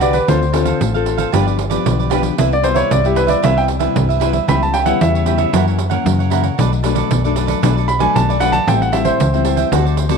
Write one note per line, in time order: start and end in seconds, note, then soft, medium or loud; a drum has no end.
0.00 0.21 C2 medium
0.00 0.26 D3 medium
0.00 0.17 D4 medium
0.00 0.13 F#4 medium
0.00 0.17 F#4 soft
0.00 0.13 G4 medium
0.00 0.17 B4 medium
0.00 0.12 B4 medium
0.00 0.15 D5 medium
0.00 0.11 D5 medium
0.00 pandeiro medium
0.12 0.27 G4 soft
0.12 0.27 B4 soft
0.12 0.28 B4 medium
0.12 0.26 D5 medium
0.12 pandeiro medium
0.28 0.73 D2 medium
0.28 0.78 D3 medium
0.28 0.44 C4 soft
0.28 0.40 D4 medium
0.28 0.44 F4 medium
0.28 0.41 A4 medium
0.28 0.44 A4 medium
0.28 0.41 C5 medium
0.28 1.30 C5 medium
0.28 0.41 F5 medium
0.28 pandeiro medium
0.41 muted cavaquinho stroke soft
0.41 pandeiro soft
0.53 0.90 C4 medium
0.53 0.66 D4 soft
0.53 0.90 F4 medium
0.53 0.66 A4 medium
0.53 0.90 A4 medium
0.53 0.65 C5 soft
0.53 0.64 F5 medium
0.53 pandeiro medium
0.65 0.93 A4 medium
0.65 0.92 C5 medium
0.65 0.92 F5 medium
0.65 pandeiro medium
0.81 1.26 A1 medium
0.81 1.31 A2 soft
0.81 pandeiro medium
0.94 1.30 C4 medium
0.94 1.30 F4 medium
0.94 1.05 A4 soft
0.94 1.30 A4 medium
0.94 1.06 C5 soft
0.94 1.06 F5 soft
0.94 pandeiro soft
1.05 1.19 D4 soft
1.05 1.18 A4 medium
1.05 1.17 C5 soft
1.05 1.16 F5 soft
1.05 pandeiro medium
1.17 1.32 A4 medium
1.17 1.32 C5 medium
1.17 1.31 F5 medium
1.17 pandeiro medium
1.32 1.78 G1 medium
1.32 1.84 G2 medium
1.32 1.58 F3 medium
1.32 1.59 B3 medium
1.32 1.59 D4 medium
1.32 1.45 F4 medium
1.32 1.45 G4 medium
1.32 1.46 B4 medium
1.32 1.45 D5 medium
1.32 pandeiro medium
1.46 1.57 G4 soft
1.46 1.57 B4 soft
1.46 1.57 D5 soft
1.46 pandeiro soft
1.58 muted cavaquinho stroke soft
1.58 pandeiro medium
1.70 2.08 F3 medium
1.70 2.08 B3 medium
1.70 2.08 D4 medium
1.70 1.98 G4 medium
1.70 1.97 B4 medium
1.70 1.97 D5 medium
1.70 pandeiro medium
1.86 2.31 B1 medium
1.86 2.37 D3 medium
1.86 pandeiro medium
1.99 2.09 G4 soft
1.99 2.10 B4 soft
1.99 2.11 D5 soft
1.99 pandeiro soft
2.10 2.34 F3 medium
2.10 2.34 B3 medium
2.10 2.35 D4 medium
2.10 2.23 F4 medium
2.10 2.23 G4 medium
2.10 2.22 B4 medium
2.10 2.21 D5 medium
2.10 pandeiro medium
2.22 2.37 G4 soft
2.22 2.36 B4 soft
2.22 2.36 D5 medium
2.22 pandeiro medium
2.38 2.83 C2 loud
2.38 2.89 C3 medium
2.38 2.54 G3 medium
2.38 2.55 B3 medium
2.38 2.50 E4 medium
2.38 2.55 E4 medium
2.38 2.51 B4 medium
2.38 2.51 C5 medium
2.38 2.51 E5 medium
2.38 pandeiro medium
2.52 2.65 D5 medium
2.52 muted cavaquinho stroke soft
2.52 pandeiro soft
2.63 3.00 G3 medium
2.63 3.00 B3 medium
2.63 2.76 E4 soft
2.63 3.00 E4 medium
2.63 2.74 B4 soft
2.63 2.75 C5 medium
2.63 2.77 C5 medium
2.63 2.73 E5 soft
2.63 pandeiro medium
2.74 3.02 B4 medium
2.74 3.03 C5 medium
2.74 2.90 C#5 medium
2.74 3.02 E5 medium
2.74 pandeiro medium
2.91 3.36 C2 loud
2.91 3.41 G2 soft
2.91 3.05 D5 medium
2.91 pandeiro medium
3.04 3.40 G3 medium
3.04 3.40 B3 medium
3.04 3.41 E4 medium
3.04 3.18 G4 medium
3.04 3.16 B4 soft
3.04 3.15 C5 soft
3.04 3.16 E5 soft
3.04 pandeiro soft
3.15 3.28 E4 soft
3.15 3.30 B4 medium
3.15 3.27 B4 soft
3.15 3.28 C5 soft
3.15 3.26 E5 medium
3.15 pandeiro medium
3.27 3.41 B4 medium
3.27 3.42 C5 medium
3.27 3.43 D5 medium
3.27 3.41 E5 medium
3.27 pandeiro medium
3.42 3.88 C2 loud
3.42 3.94 C3 medium
3.42 3.68 G3 medium
3.42 3.69 B3 medium
3.42 3.55 E4 medium
3.42 3.69 E4 medium
3.42 3.56 B4 medium
3.42 3.56 C5 medium
3.42 3.57 E5 medium
3.42 3.56 E5 medium
3.42 pandeiro medium
3.57 3.67 B4 soft
3.57 3.67 C5 soft
3.57 3.68 E5 soft
3.57 3.65 G5 medium
3.57 pandeiro soft
3.68 muted cavaquinho stroke soft
3.68 pandeiro medium
3.79 4.17 G3 medium
3.79 4.17 B3 medium
3.79 4.18 E4 medium
3.79 4.07 B4 medium
3.79 4.08 C5 medium
3.79 4.06 E5 medium
3.79 pandeiro medium
3.96 4.41 C2 loud
3.96 4.46 G2 medium
3.96 pandeiro medium
4.09 4.20 B4 soft
4.09 4.20 C5 soft
4.09 4.21 E5 medium
4.09 pandeiro soft
4.20 4.37 G3 medium
4.20 4.38 B3 medium
4.20 4.33 E4 medium
4.20 4.38 E4 medium
4.20 4.32 B4 medium
4.20 4.33 C5 medium
4.20 4.31 E5 medium
4.20 pandeiro medium
4.32 4.47 B4 soft
4.32 4.47 C5 soft
4.32 4.46 E5 soft
4.32 pandeiro medium
4.48 4.93 C#2 medium
4.48 4.99 C#3 medium
4.48 4.73 G3 medium
4.48 4.74 B3 medium
4.48 4.74 E4 medium
4.48 4.60 G4 medium
4.48 4.61 B4 medium
4.48 4.61 C#5 medium
4.48 4.61 E5 medium
4.48 4.62 B5 medium
4.48 pandeiro medium
4.62 4.75 A5 medium
4.62 muted cavaquinho stroke soft
4.62 pandeiro soft
4.73 4.86 G4 soft
4.73 4.86 B4 medium
4.73 4.85 C#5 medium
4.73 4.84 E5 medium
4.73 4.87 G5 medium
4.73 pandeiro medium
4.85 5.22 G3 medium
4.85 5.22 B3 medium
4.85 5.23 E4 medium
4.85 5.13 B4 medium
4.85 5.12 C#5 medium
4.85 5.12 E5 medium
4.85 5.00 F#5 medium
4.85 pandeiro medium
5.01 5.46 E2 medium
5.01 5.51 C#3 medium
5.01 5.76 E5 medium
5.01 pandeiro medium
5.15 5.26 B4 soft
5.15 5.26 C#5 soft
5.15 5.27 E5 soft
5.15 pandeiro soft
5.26 5.49 G3 medium
5.26 5.49 B3 medium
5.26 5.49 E4 medium
5.26 5.39 G4 medium
5.26 5.39 B4 soft
5.26 5.38 C#5 soft
5.26 5.37 E5 soft
5.26 pandeiro medium
5.38 5.52 B4 medium
5.38 5.52 C#5 medium
5.38 5.51 E5 medium
5.38 pandeiro medium
5.53 5.98 F#2 medium
5.53 6.04 F#2 medium
5.53 5.78 E3 medium
5.53 5.79 A#3 medium
5.53 5.79 C#4 medium
5.53 5.65 E4 medium
5.53 5.66 A#4 medium
5.53 5.66 C#5 medium
5.53 5.66 F#5 medium
5.53 pandeiro loud
5.67 5.77 A#4 soft
5.67 5.77 C#5 soft
5.67 5.78 F#5 soft
5.67 pandeiro soft
5.78 muted cavaquinho stroke soft
5.78 pandeiro medium
5.90 6.27 E3 medium
5.90 6.27 A#3 medium
5.90 6.27 C#4 medium
5.90 6.17 A#4 medium
5.90 6.17 C#5 medium
5.90 6.16 F#5 medium
5.90 pandeiro medium
6.06 6.50 F#2 medium
6.06 6.56 C#3 medium
6.06 pandeiro medium
6.19 6.30 A#4 soft
6.19 6.30 C#5 soft
6.19 6.31 F#5 soft
6.19 pandeiro soft
6.30 6.47 E3 medium
6.30 6.48 A#3 medium
6.30 6.48 C#4 medium
6.30 6.43 E4 medium
6.30 6.43 A#4 medium
6.30 6.42 C#5 medium
6.30 6.42 F#5 medium
6.30 pandeiro medium
6.43 6.57 A#4 soft
6.43 6.57 C#5 soft
6.43 6.56 F#5 soft
6.43 pandeiro medium
6.58 7.03 B1 loud
6.58 7.09 B2 medium
6.58 6.81 F#3 medium
6.58 6.81 A3 medium
6.58 6.70 D4 medium
6.58 6.81 D4 medium
6.58 6.71 A4 medium
6.58 6.71 B4 medium
6.58 6.71 D5 medium
6.58 pandeiro medium
6.72 muted cavaquinho stroke soft
6.72 pandeiro soft
6.83 7.20 F#3 medium
6.83 7.20 A3 medium
6.83 6.96 D4 soft
6.83 7.20 D4 medium
6.83 6.96 A4 soft
6.83 6.95 B4 soft
6.83 6.94 D5 medium
6.83 pandeiro medium
6.95 7.22 A4 medium
6.95 7.22 B4 medium
6.95 7.21 D5 medium
6.95 pandeiro medium
7.11 7.55 B1 medium
7.11 7.61 F#2 medium
7.11 pandeiro medium
7.24 7.60 F#3 medium
7.24 7.60 A3 medium
7.24 7.60 D4 medium
7.24 7.35 A4 soft
7.24 7.36 B4 soft
7.24 7.36 D5 medium
7.24 pandeiro soft
7.36 7.48 D4 soft
7.36 7.48 A4 medium
7.36 7.47 B4 medium
7.36 7.46 D5 medium
7.36 pandeiro medium
7.47 7.62 A4 medium
7.47 7.61 B4 medium
7.47 7.61 D5 medium
7.47 pandeiro medium
7.62 8.08 B1 loud
7.62 8.13 B2 medium
7.62 7.88 F#3 soft
7.62 7.88 A3 medium
7.62 7.75 D4 medium
7.62 7.88 D4 medium
7.62 7.75 A4 medium
7.62 7.76 B4 medium
7.62 7.75 D5 medium
7.62 pandeiro medium
7.76 7.86 A4 soft
7.76 7.87 B4 soft
7.76 7.87 D5 medium
7.76 pandeiro soft
7.87 8.01 B5 medium
7.87 muted cavaquinho stroke soft
7.87 pandeiro medium
7.99 8.37 F#3 medium
7.99 8.37 A3 medium
7.99 8.37 D4 medium
7.99 8.27 A4 medium
7.99 8.27 B4 medium
7.99 8.26 D5 medium
7.99 8.14 G#5 medium
7.99 pandeiro medium
8.16 8.60 B1 medium
8.16 8.66 F#2 medium
8.16 8.28 A5 medium
8.16 pandeiro medium
8.29 8.39 A4 soft
8.29 8.40 B4 soft
8.29 8.41 D5 soft
8.29 8.42 D5 medium
8.29 pandeiro soft
8.40 8.57 F#3 medium
8.40 8.57 A3 medium
8.40 8.53 D4 medium
8.40 8.57 D4 medium
8.40 8.53 A4 medium
8.40 8.52 B4 medium
8.40 8.51 D5 medium
8.40 8.54 F#5 loud
8.40 pandeiro medium
8.52 8.66 A4 soft
8.52 8.66 B4 soft
8.52 8.66 D5 medium
8.52 8.66 A5 loud
8.52 pandeiro medium
8.67 9.12 A1 loud
8.67 9.18 A2 medium
8.67 8.90 G3 medium
8.67 8.90 C4 medium
8.67 8.91 E4 medium
8.67 8.80 A4 medium
8.67 8.80 C5 medium
8.67 8.80 E5 medium
8.67 8.81 G5 medium
8.67 pandeiro medium
8.82 8.94 F#5 medium
8.82 muted cavaquinho stroke soft
8.82 pandeiro soft
8.92 9.18 G3 medium
8.92 9.18 C4 medium
8.92 9.19 E4 medium
8.92 9.05 A4 soft
8.92 9.05 C5 medium
8.92 9.06 E5 medium
8.92 9.04 E5 medium
8.92 9.03 G5 medium
8.92 pandeiro medium
9.05 10.18 C5 medium
9.05 9.32 C5 medium
9.05 9.31 E5 medium
9.05 9.31 G5 medium
9.05 pandeiro medium
9.20 9.65 C#2 medium
9.20 9.70 E3 medium
9.20 pandeiro medium
9.33 9.69 G3 medium
9.33 9.69 C4 medium
9.33 9.69 E4 medium
9.33 9.44 C5 soft
9.33 9.45 E5 soft
9.33 9.45 G5 soft
9.33 pandeiro soft
9.45 9.58 A4 medium
9.45 9.58 C5 medium
9.45 9.57 E5 medium
9.45 9.55 G5 medium
9.45 pandeiro medium
9.57 9.71 C5 medium
9.57 9.71 E5 medium
9.57 9.70 G5 medium
9.57 pandeiro medium
9.72 10.17 D2 medium
9.72 10.18 D3 medium
9.72 10.08 A3 medium
9.72 10.08 C4 medium
9.72 9.84 F#4 medium
9.72 10.08 F#4 medium
9.72 9.85 A4 medium
9.72 9.85 C5 medium
9.72 9.84 D5 medium
9.72 pandeiro medium
9.85 9.96 A4 soft
9.85 9.96 C5 soft
9.85 9.97 D5 medium
9.85 pandeiro soft
9.97 muted cavaquinho stroke soft
9.97 pandeiro medium
10.09 10.18 A3 medium
10.09 10.18 C4 medium
10.09 10.18 F#4 medium
10.09 10.18 A4 medium
10.09 10.18 C5 medium
10.09 10.18 D5 medium
10.09 pandeiro medium